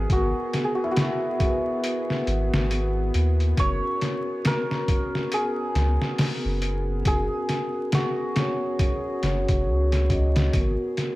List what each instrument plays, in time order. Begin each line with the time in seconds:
Already playing: synth drone B3 G#4, santur D#4 G#4 A#4
0.07 sub bass G#1, vibraphone B3 F#4, kick, closed hi-hat
0.13 santur F#4, vibraphone A#4
0.53 snare, closed hi-hat
0.64 santur G#4
0.75 santur F#4
0.84 santur E4
0.91 santur F#4
0.96 snare, closed hi-hat
1.37 vibraphone B3, kick, closed hi-hat
1.41 vibraphone F#4 B4
1.84 closed hi-hat
2.10 snare
2.27 sub bass G#1, closed hi-hat
2.53 sub bass G#1, snare
2.71 closed hi-hat
3.14 sub bass D#2, closed hi-hat
3.40 closed hi-hat
3.55 sub bass F#1, vibraphone C#4 F#4, kick, closed hi-hat
3.60 vibraphone A#4, santur C#5
4.01 snare, closed hi-hat
4.45 santur A#4, snare, closed hi-hat
4.71 snare
4.85 vibraphone C#4 F#4, kick, closed hi-hat
4.92 vibraphone A#4
5.15 snare
5.32 santur G#4, closed hi-hat
5.75 sub bass C#2, snare, closed hi-hat
6.02 snare
6.18 snare, open hi-hat
6.45 sub bass F#1
6.62 closed hi-hat
7.03 sub bass F#1, vibraphone C#4 F#4, kick, closed hi-hat
7.07 santur G#4, vibraphone A#4
7.49 snare, closed hi-hat
7.92 santur F#4, snare, closed hi-hat
8.35 vibraphone C#4 F#4 C#5, snare, closed hi-hat
8.79 kick, closed hi-hat
9.22 sub bass F#1, vibraphone C#4 F#4 C#5, snare, closed hi-hat
9.48 sub bass F#1, kick, closed hi-hat
9.67 sub bass C#2
9.92 snare, closed hi-hat
10.09 vibraphone C#4 F#4 D#5, kick, closed hi-hat
10.36 snare, closed hi-hat
10.50 sub bass G#1, vibraphone B3, kick, closed hi-hat
10.54 vibraphone F#4 A#4
10.97 snare, closed hi-hat